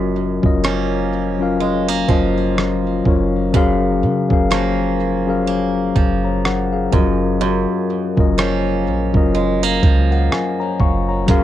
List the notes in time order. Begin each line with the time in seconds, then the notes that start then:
Already playing: F#1 F#2 F#3 A#3 C#4 F4 A#4 D#5
0.42 F#1 F#3 C#4 F4 A#4, kick
0.46 D#5
0.64 F3 A#3 C#4, cross-stick
1.39 F#3 C#4 F4 A#4
1.43 F5
1.60 G#3
1.88 A#3
2.07 F#1 F3 F#3 C#4 F4 A#4, kick
2.11 D#5
2.58 cross-stick
3.04 F#1 F#3 C#4 F4 A#4, kick
3.08 C#5
3.53 F#1 F#2 F#3 C#4 G#4 A#4, kick
3.57 F5
4.03 C#3
4.29 F#1 F#3 C#4 G#4 A#4, kick
4.33 F5
4.51 F3 A#3 C#4, cross-stick
5.26 F#3 C#4 G#4 A#4
5.30 F5
5.47 A#3
5.96 F#1 F3, kick
6.24 C#5 A#5
6.45 A#4 F#5, cross-stick
6.73 G#4 F5
6.91 F#1 F#2 F3 C#4 F4 A#4, kick
6.95 F#3 D#5
7.41 F#2
8.16 F#1 F#3 C#4 F4 A#4, kick
8.20 D#5
8.38 F3 A#3 C#4, cross-stick
8.87 A#1
9.13 F#1 F#3 C#4 F4 A#4, kick
9.17 D#5
9.35 G#3
9.63 A#3
9.83 C#2 F3, kick
10.11 A#4 F#5
10.32 G#5, cross-stick
10.60 C#5 A#5
10.80 F#1 F5 C#6, kick
11.09 C#5 A#5
11.27 F#1 F#2 F#3 C#4 G#4 A#4 F5 C#6, kick, closed hi-hat
11.31 F5